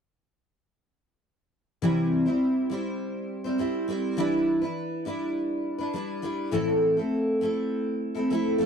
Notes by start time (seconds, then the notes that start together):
1.82 C3 E3 G3 C4 E4 C5
2.26 G3 C4 E4 C5
2.70 G3 C4 E4 C5
3.44 G3 C4 E4 C5
3.58 G3 C4 E4 C5
3.88 G3 C4 E4 C5
4.17 E3 G3 D4 E4 B4
4.62 D4 E4 B4
5.05 G3 D4 E4 B4
5.78 D4 E4 B4
5.94 G3 D4 E4 B4
6.22 G3 D4 E4 B4
6.51 A2 E3 A3 C4 E4 A4
6.97 A3 C4 E4 A4
7.41 A3 C4 E4 A4
8.15 A3 C4 E4 A4
8.30 A3 C4 E4 A4
8.58 A3 C4 F4 A4